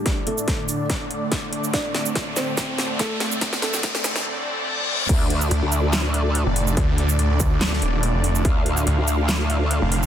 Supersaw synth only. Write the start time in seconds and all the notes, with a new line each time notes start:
Already playing: A2 D3 A3 D4 D5
1.74 C4
5.09 A2 D3 A3 D4 D5
8.45 F5